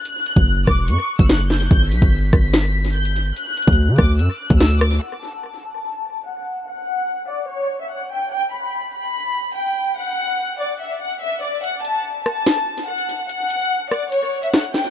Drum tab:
HH |x---x-----------x-----x---x-x-x-|x---x-----------x-----x---x-x---|x---xxxx--------x-----x---x-x-x-|--------------------------------|
SD |------------r-----------o---o---|------------r---o---------------|------------r-----------o---r---|--------------------------------|
BD |------o-----o---------o---------|o-----o-----o-------------------|------o-----o---------o---------|--------------------------------|

HH |--------------------------------|--------------------------------|--------------------------------|x---x-----------x-----x---x-x---|
SD |--------------------------------|--------------------------------|--------------------------------|------------r---o---------------|
BD |--------------------------------|--------------------------------|--------------------------------|--------------------------------|

HH |x---x-----------x-----x---x-x-x-|
SD |------------r-----------o---o---|
BD |--------------------------------|